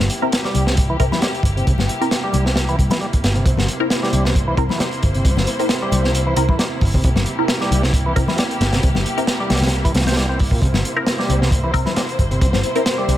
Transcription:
Already playing: C3 A#3 E4 G4
0.10 closed hi-hat
0.22 C4 E4 A#4
0.32 snare, closed hi-hat
0.45 G3, snare
0.54 C2, closed hi-hat, high conga
0.67 C3, snare
0.77 kick, closed hi-hat
0.90 E3
0.99 C2 C4 E4 A#4, kick, closed hi-hat
1.12 E3, snare, high conga
1.22 G3, snare, closed hi-hat
1.35 closed hi-hat
1.43 G1, kick, closed hi-hat
1.57 C3, closed hi-hat
1.67 C2 C3, kick, closed hi-hat
1.78 G1, snare, high conga
1.89 closed hi-hat
2.01 C4 E4 A#4, closed hi-hat
2.11 snare, closed hi-hat
2.24 G3
2.33 C2, closed hi-hat, high conga
2.46 C3, snare
2.56 snare, closed hi-hat
2.69 E3, closed hi-hat
2.79 C2, kick, closed hi-hat
2.90 E3, snare, closed hi-hat, high conga
3.01 G3, closed hi-hat
3.13 kick, closed hi-hat
3.23 G1, snare, closed hi-hat
3.35 C3, closed hi-hat
3.46 C2 C3 C5, kick, closed hi-hat
3.57 G1, snare, high conga
3.68 closed hi-hat
3.80 C4 E4 A#4
3.90 snare, closed hi-hat
4.03 G3, snare
4.12 C2, closed hi-hat, high conga
4.25 C3, snare
4.35 kick, closed hi-hat
4.48 E3
4.57 C2 C4 E4 A#4, kick, closed hi-hat
4.69 E3, snare, high conga
4.80 G3, snare, closed hi-hat
4.93 closed hi-hat
5.03 G1, kick, closed hi-hat
5.14 C3, closed hi-hat
5.25 C2 C3, kick, closed hi-hat
5.37 G1, snare, high conga
5.47 closed hi-hat
5.59 C4 E4 A#4, closed hi-hat
5.69 snare, closed hi-hat
5.82 G3
5.92 C2, closed hi-hat, high conga
6.04 C3, snare
6.15 closed hi-hat
6.27 E3
6.36 C2 C4 E4 A#4, closed hi-hat
6.49 E3, kick, high conga
6.59 G3, snare, closed hi-hat
6.81 G1, kick, open hi-hat
6.94 C3, kick
7.04 C2 C3 G4, kick, closed hi-hat
7.16 G1, snare, high conga
7.26 closed hi-hat
7.39 C4 E4 A#4
7.48 snare, closed hi-hat
7.61 G3, snare
7.71 C2, closed hi-hat, high conga
7.83 C3, snare
7.93 kick, closed hi-hat
8.06 E3
8.16 C2 C4 E4 A#4, kick, closed hi-hat
8.28 E3, snare, high conga
8.38 G3, snare, closed hi-hat
8.51 closed hi-hat
8.61 G1, snare, closed hi-hat
8.73 C3, snare, closed hi-hat
8.83 C2 C3, kick, closed hi-hat
8.95 G1, snare, high conga
9.06 closed hi-hat
9.17 C4 E4 A#4, closed hi-hat
9.27 snare, closed hi-hat
9.40 G3
9.50 C2, snare, closed hi-hat, high conga
9.56 snare, closed hi-hat
9.61 C3, snare, closed hi-hat, low conga
9.67 snare, closed hi-hat
9.72 closed hi-hat
9.85 E3, kick, closed hi-hat
9.95 C2 C3, snare, closed hi-hat
10.00 snare, closed hi-hat
10.06 C4, snare, closed hi-hat, high conga
10.12 snare, closed hi-hat
10.17 G3, snare, closed hi-hat
10.29 C4
10.39 kick, open hi-hat
10.51 A#2, kick
10.62 C2 C3 C5, kick, closed hi-hat
10.74 G1, snare, high conga
10.85 closed hi-hat
10.96 C4 E4 A#4
11.07 snare, closed hi-hat
11.19 G3, snare
11.29 C2, closed hi-hat, high conga
11.41 C3, snare
11.51 kick, closed hi-hat
11.64 E3
11.74 C2 C4 E4 A#4, kick, closed hi-hat
11.86 E3, snare, high conga
11.96 G3, snare, closed hi-hat
12.09 closed hi-hat
12.19 G1, kick, closed hi-hat
12.31 C3, closed hi-hat
12.41 C2 C3, kick, closed hi-hat
12.53 G1, snare, high conga
12.63 closed hi-hat
12.75 C4 E4 A#4, closed hi-hat
12.86 snare, closed hi-hat
12.98 G3
13.08 C2, closed hi-hat, high conga

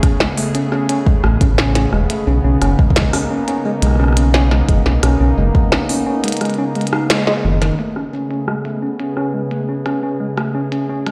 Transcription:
Already playing: C#3 A3 B3 G#4
0.03 C#4, kick, cross-stick, closed hi-hat
0.20 G#3, snare
0.37 A3, open hi-hat
0.55 C#4, closed hi-hat
0.72 C#4, cross-stick
0.89 C#4, closed hi-hat
1.06 G#3, kick
1.24 A1 A3, cross-stick
1.41 A1 C#4, kick, closed hi-hat
1.58 C#4, snare
1.75 C#4, snare, closed hi-hat
1.93 E1 G#3, cross-stick
2.10 A3, closed hi-hat
2.27 B1 A#3 C#4 D#4
2.44 B1 C#4
2.62 F#1 C#4, cross-stick, closed hi-hat
2.79 G#3, kick
2.90 kick
2.96 G#3, snare, closed hi-hat
3.02 kick
3.13 C#4, cross-stick, open hi-hat
3.31 C#4
3.48 C#4, closed hi-hat
3.65 G#3
3.82 B1 G#3, cross-stick, closed hi-hat
3.87 cross-stick
3.91 cross-stick
3.95 cross-stick
4.00 C#4, cross-stick
4.04 cross-stick
4.08 cross-stick
4.13 cross-stick
4.17 C#4, closed hi-hat
4.34 C#4, snare
4.51 G#3, cross-stick, snare
4.69 F#1 G#3, kick, closed hi-hat
4.86 B1 C#4, snare
5.03 B1 C#4, cross-stick, closed hi-hat
5.20 B1 C#4
5.38 F#1 G#3
5.55 G#3, kick
5.72 C#4, cross-stick, snare
5.89 C#4, open hi-hat
6.07 C#4
6.24 G#3, closed hi-hat
6.28 closed hi-hat
6.32 closed hi-hat
6.37 closed hi-hat
6.41 G#3, cross-stick, closed hi-hat
6.45 closed hi-hat
6.50 closed hi-hat
6.54 closed hi-hat
6.58 C#4
6.75 G#3, closed hi-hat
6.81 closed hi-hat
6.87 closed hi-hat
6.93 D#4, cross-stick
7.10 G#3, snare, closed hi-hat
7.27 G#3, snare
7.44 F#1 D#3
7.62 D#3, cross-stick, snare, closed hi-hat
7.79 C#3 A3 B3 G#4, closed hi-hat
7.96 C#4, cross-stick
8.13 C#4
8.31 C#4, closed hi-hat
8.48 G#3, cross-stick
8.65 A3, closed hi-hat
8.82 C#4
9.00 C#4, closed hi-hat
9.17 C#4, cross-stick
9.34 G#3
9.51 A3, closed hi-hat
9.69 C#4
9.86 C#4, cross-stick, closed hi-hat
10.03 C#4
10.20 G#3
10.38 A3, cross-stick, closed hi-hat
10.55 C#4
10.72 C#4, closed hi-hat
10.89 C#4
11.07 G#3, cross-stick, closed hi-hat

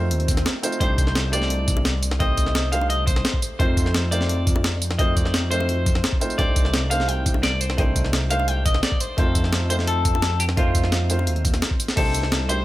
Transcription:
Already playing: F2 A3 C4 D#4 F4 C5
0.11 D#2, closed hi-hat, swell
0.20 closed hi-hat
0.28 kick, closed hi-hat, tambourine
0.37 snare, closed hi-hat, tambourine
0.46 snare, closed hi-hat
0.63 A3 C4 D#4 F4 C5, closed hi-hat, tambourine
0.72 tambourine
0.80 C2 A3 D4 D#4 G4 C5, kick, closed hi-hat
0.98 kick, closed hi-hat, tambourine
1.07 snare
1.15 snare, closed hi-hat
1.32 A3 D4 D#4 G4 C5 D5, closed hi-hat, tambourine
1.42 snare
1.50 closed hi-hat
1.68 kick, closed hi-hat, tambourine
1.77 high bongo
1.85 snare, closed hi-hat
2.03 closed hi-hat, tambourine
2.11 snare
2.19 C2 A3 C4 D#4 G4 C5 D#5, kick, closed hi-hat
2.37 kick, closed hi-hat, tambourine
2.46 C2, snare
2.55 snare, closed hi-hat
2.72 A3 D4 D#4 G4 C5 F5, closed hi-hat, tambourine
2.81 high bongo
2.90 D#5, closed hi-hat
3.07 C5, kick, closed hi-hat, tambourine
3.16 snare
3.25 snare, closed hi-hat
3.34 kick
3.42 closed hi-hat, tambourine
3.59 F2 A3 C4 D#4 F4 C5, kick, closed hi-hat
3.77 kick, closed hi-hat, tambourine
3.86 snare
3.95 snare, closed hi-hat
4.11 A3 C4 D#4 F4 C5 D5, closed hi-hat, tambourine
4.21 snare
4.29 closed hi-hat
4.47 kick, closed hi-hat, tambourine
4.56 high bongo
4.64 snare, closed hi-hat
4.82 closed hi-hat, tambourine
4.91 snare
4.98 F2 A3 C4 D#4 F4 C5 D#5, kick, closed hi-hat
5.16 D5, kick, closed hi-hat, tambourine
5.25 F2, snare
5.34 snare, closed hi-hat
5.50 A3 C4 D#4 F4 C5, closed hi-hat, tambourine
5.60 high bongo
5.69 closed hi-hat
5.86 kick, closed hi-hat, tambourine
5.95 snare
6.04 snare, closed hi-hat
6.13 kick
6.20 A3 C4 D#4 F4 C5, closed hi-hat, tambourine
6.30 tambourine
6.38 C2 A3 D4 D#4 G4 C5 D5, kick, closed hi-hat
6.56 kick, closed hi-hat, tambourine
6.65 snare
6.74 snare, closed hi-hat
6.90 A3 D4 D#4 G4 C5 F5, closed hi-hat, tambourine
7.00 snare
7.08 G5, closed hi-hat
7.26 kick, closed hi-hat, tambourine
7.34 high bongo
7.43 D5, snare, closed hi-hat
7.61 C5, closed hi-hat, tambourine
7.70 snare
7.77 C2 A3 D4 D#4 G4 C5 D5, kick, closed hi-hat
7.96 kick, closed hi-hat, tambourine
8.05 C2, snare
8.13 snare, closed hi-hat
8.30 A3 D4 D#4 G4 C5 F5, closed hi-hat, tambourine
8.39 high bongo
8.48 G5, closed hi-hat
8.66 D#5, kick, closed hi-hat, tambourine
8.74 snare
8.83 D5, snare, closed hi-hat
8.92 kick
9.00 C5, closed hi-hat, tambourine
9.17 F2 A3 C4 D#4 F4 A4 C5, kick, closed hi-hat
9.35 kick, closed hi-hat, tambourine
9.44 snare
9.53 snare, closed hi-hat
9.69 A3 C4 D#4 F4 C5, closed hi-hat, tambourine
9.79 snare
9.87 A4, closed hi-hat
10.05 kick, closed hi-hat, tambourine
10.15 high bongo
10.22 snare, closed hi-hat
10.40 G4, closed hi-hat, tambourine
10.49 snare
10.56 F2 A3 C4 D#4 F4 C5, kick, closed hi-hat
10.75 kick, closed hi-hat, tambourine
10.84 F2, snare
10.92 snare, closed hi-hat
11.09 A3 C4 D#4 F4 C5, closed hi-hat, tambourine
11.19 high bongo
11.27 D#2, closed hi-hat
11.36 closed hi-hat
11.45 kick, closed hi-hat, tambourine
11.54 snare, closed hi-hat, tambourine
11.62 snare, closed hi-hat
11.71 kick
11.80 closed hi-hat, tambourine
11.89 snare, tambourine
11.96 C2 A3 D4 D#4 G4 A4 C5, kick, closed hi-hat, crash
12.14 closed hi-hat, tambourine
12.23 snare
12.32 snare, closed hi-hat
12.48 A3 D4 D#4 G4 C5, closed hi-hat, tambourine

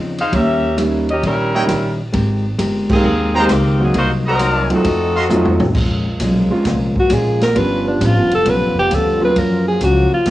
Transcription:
Already playing: E2 C#3 F3 C4 D#4
0.18 D#4 G#4 C5 F5, ride
0.32 D#2 D#3 G3 C#4 E4 G4 A#4 E5, kick, ride
0.77 D#3 G3 A#3 C#4 D#4 E4, hi-hat pedal, ride
1.09 C#4 G4 A#4 D#5, ride
1.22 A#1 D#3 G3 C#4 E4 A#4, kick, ride
1.54 G3 A#3 C#4 D#4 E4 C#5 D#5 G5
1.67 A#1 D#3 G3 C#4 E4, cross-stick, hi-hat pedal, ride
2.13 G#1 G#3 C4 G4 A#4, kick, ride
2.58 G1 G#3 C4 G4 A#4, hi-hat pedal, ride
2.90 D#3 G#3 A#3 C4 D#4 G4 G#4, kick, crash
3.04 D#2 G#3 C4 G4 A#4
3.34 G#3 A#3 C4 D#4 G4 G#4 C5 G5 A#5
3.39 A#3 D#4 G4 C5
3.49 C#2 G#3 C4 G4 A#4, cross-stick, hi-hat pedal, ride
3.53 D#3 A#3 G4
3.79 F#3 A#3 C4 D#4 F#4
3.83 D#3 A#3 C4 G#4
3.94 C2 C3 F#3 A#3 D#4 C5, kick, ride
3.98 D#4 F#4
4.26 F#3 C4 D#4 F#4 A#4 C5 D#5 A#5
4.39 C3 F#3 A#3 D#4, hi-hat pedal, ride
4.70 F#2 F#3 A3 C4 D#4 F4, ride
4.75 C4 D#4 F#4 A4
4.84 F2 F3 A3 D#4 F#4, kick, ride
5.15 F#4 D#5 F5 C6
5.28 F3 F#3 A3 C4 D#4 F4 F#4, floor tom, hi-hat pedal
5.45 floor tom
5.60 A1, floor tom
5.74 A#1 A#2 F3 G#3 A#3 C#4 F4, kick, crash
6.20 B1 A#2 F3 G#3 C#4, kick, hi-hat pedal, ride
6.50 G#3 A#3 C4 C#4 F4, muted upright bass stroke
6.65 C2 A#2 F3 G#3 C#4, kick, snare, ride
6.96 F#4, muted upright bass stroke, kick
7.10 A#1 A#2 F3 G#3 C#4 G#4, kick, hi-hat pedal, ride
7.41 A#4, snare, ride
7.54 G1 G2 F3 G3 B3 C#4 D4 F4 B4, kick, ride
7.88 D4
8.01 A1 G2 F3 B3 C#4, kick, hi-hat pedal, ride
8.06 F4
8.15 G1
8.30 F1, ride
8.34 A4
8.45 B1 G2 F3 B3 C#4, kick, ride
8.49 B4
8.61 G1
8.74 F1
8.79 G4
8.91 D2 G2 F3 B3 C#4, kick, hi-hat pedal, ride
8.95 A4
9.21 F#3 A#3 C#4 F4 G#4 B4
9.35 F#2 F3 F#3 A#3 C#4 A#4, kick, ride
9.68 G#4
9.81 C#2 F#2 F3 A#3 C#4 F#4, kick, hi-hat pedal, ride
10.11 F4, muted upright bass stroke
10.26 D#2 F#2 F3 A#3, kick, snare, ride

